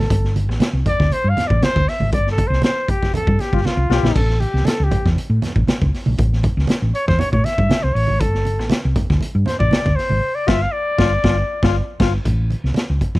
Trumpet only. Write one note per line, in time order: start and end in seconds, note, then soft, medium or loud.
0.00 0.35 A4 medium
0.88 1.14 D5 loud
1.13 1.31 C5 medium
1.29 1.49 F5 loud
1.47 1.65 D5 medium
1.64 1.90 C5 loud
1.89 2.12 E5 medium
2.13 2.29 D5 loud
2.31 2.49 A4 loud
2.48 2.64 C5 medium
2.64 2.92 C5 loud
2.90 3.15 G4 medium
3.15 3.42 A4 medium
3.41 3.67 G4 medium
3.66 3.91 F4 medium
3.91 4.14 G4 medium
4.15 4.42 A4 medium
4.40 4.67 G4 medium
4.66 4.85 A4 medium
4.84 5.09 G4 medium
6.95 7.07 C#5 medium
7.08 7.21 C5 loud
7.20 7.31 C#5 medium
7.32 7.46 C#5 medium
7.45 7.84 E5 medium
7.83 7.95 C5 medium
7.94 8.22 C#5 loud
8.20 8.71 A4 medium
9.47 9.59 C5 medium
9.59 9.97 D5 loud
9.96 10.37 C5 medium
10.35 10.49 D5 medium
10.48 10.63 E5 loud
10.62 10.74 F5 loud
10.72 11.99 D5 loud